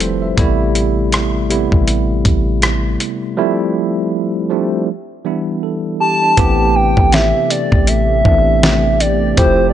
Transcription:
Already playing: F1 F3 G3 A3 C4 E4 F4 A4 B4
0.00 C5, closed hi-hat
0.22 E5
0.37 A1 C3 G3 A3 B3 E4, kick, closed hi-hat
0.75 closed hi-hat
1.12 cross-stick, closed hi-hat
1.49 C3 G3 A3 B3 E4, closed hi-hat
1.72 A1, kick
1.88 closed hi-hat
2.25 A1, kick, closed hi-hat
2.62 cross-stick, closed hi-hat
3.00 closed hi-hat
3.37 F3 G3 A3 C4 E4
4.50 F3 G3 A3 C4 D4
5.25 E3 G3 B3 D4 E4
5.63 A4
6.00 G4 A5
6.22 D4
6.37 A1 C3 E3 A3 B3 C4 G4, kick, closed hi-hat
6.75 G5
6.97 A1, kick
7.12 E5, snare, closed hi-hat
7.50 D5, closed hi-hat
7.72 A1, kick
7.87 E5, closed hi-hat
8.25 A1 E3 A3 B3 C4 D4, kick
8.63 snare
9.00 D5, closed hi-hat
9.37 F1 F3 A3 C4 E4 G4 A4 C5, kick, closed hi-hat
9.70 D5

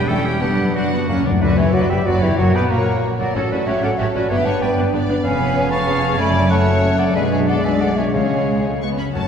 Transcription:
Already playing: E1 B2 G3 B3 D4 G4 B4 D5 G5
0.01 B5
0.08 E2 G3 A3 C#4 E4 A4 G5
0.18 E3
0.25 G3 C#4 G4
0.34 G4
0.40 F#1 F#2 G3 B3 D4 G4 F#5
0.50 F#3
0.59 B3
0.67 B4
0.74 F#3 D4 F#4 D5 F#5
0.84 B4
0.93 B3 B5
1.01 D6
1.06 F#2 A#3 C#4 F#5
1.17 F#2 C#3
1.24 F#2 D4 A#4 D5 F#5
1.31 F#2 A#4
1.41 D2 B2 D3 D4 F#4 B4 D5
1.50 D4
1.56 E1 E2 E3 E4 F#4 G4 C#5 E5
1.66 B4
1.72 F#1 F#2 F#3 F#4 B4 D5 F#5
1.82 F#5
1.89 G1 G2 G3 G4 B4 E5 G5 B5
1.99 F#5
2.05 F#1 F#2 F#3 F#4 B4 D5 F#5
2.14 B4
2.21 E1 E2 E3 E4 F#4 G4 C#5 E5
2.31 D4
2.38 F#1 F#2 A#2 F#3 F#4 A#4 C#5 F#5
2.47 C#4
2.54 B1 B2 B3 F#4 B4 D5 G5 B5
2.69 A#1 A#2 A#3 F#4 A#4 C#5 F#5 A#5
2.80 F#5
2.88 C#6
2.95 F#5
3.03 C#5
3.12 F#4
3.18 F#1 F#2 F#3 C#4 F#4 A#4 D5 F#5
3.27 A#3
3.34 A1 A2 F#3 C#4 F#4 A4 C#5
3.43 C#4
3.50 A1 A2 C#4 F#4 B4 D5
3.59 C#5
3.67 A1 A2 C#4 F#4 G4 C#5 E5
3.75 F#5
3.82 A1 A2 C#4 F#4 A4 D5 F#5 C#6
3.91 F#5
3.98 A1 A2 C#4 F#4 G4 A4 C#5 E5
4.07 F#4
4.14 A1 A2 C#4 F#4 B4 D5
4.23 A3
4.30 G1 G2 B3 D4 G4 B4 C#5 E5
4.39 B3
4.45 G1 G2 B3 D4 C#5 F#5 A5
4.54 D5
4.61 G1 G2 B3 D4 B4 D5 G5
4.71 D5
4.77 G1 G2 B3 D4 D6
4.86 D5
4.92 G1 G2 B3 D4 B4 D5
5.01 D5
5.08 G1 G2 B3 D4
5.17 B3
5.23 F1 F2 B3 C#4 B4 C#5 F5 G#5
5.33 G#3
5.40 C#4
5.56 G#4
5.64 C#5
5.71 F5 A5 B5 C#6
5.87 G#4
5.96 B4
6.12 G#3
6.18 F#1 F#2 A3 C#4 A4 D5 G#5 B5
6.28 F#3
6.44 A4
6.50 A3 C#4 F#4 C#5 F#5 A5
6.60 C#5
6.76 C#5
6.84 F#4
6.91 A4
6.98 C#4 A4 D5 F#5
7.08 F#3
7.15 B1 B2 G#3 D4 G#4 B4 D5
7.24 G#3
7.31 D4 G#4 C#5 E5
7.40 G#4
7.47 A4 D5 F#5
7.56 D5
7.64 B4 E5 G#5
7.72 D5
7.80 G#4 A4 D5 F#5
7.89 D4
7.96 G#3 G#4 C#5 E5
8.06 B3
8.13 C#2 C#3 G#3 C#4 G#4 C#5 F5
8.22 C#4
8.31 G#4
8.40 C#4
8.49 G#3
8.57 G#5
8.65 A3 C#5
8.73 G#5
8.82 B3 C#5 C#6
8.90 G#4
8.97 F#2 C#4 B5
9.02 A3
9.06 G#3 C#4
9.11 F#2 A3 C#4 F#4 C#5 F#5 A5
9.15 F#1 F#2 F#3 C#4 F#4 A4 A5 C#6

